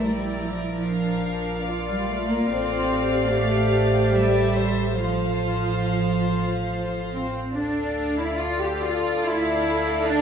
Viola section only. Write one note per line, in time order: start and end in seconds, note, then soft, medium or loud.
0.00 0.87 E4 medium
0.86 1.26 D4 medium
1.28 1.68 D4 medium
1.69 2.49 F4 medium
2.50 2.90 F4 medium
2.91 4.99 G4 medium
4.99 7.32 F4 medium
7.56 10.21 A4 medium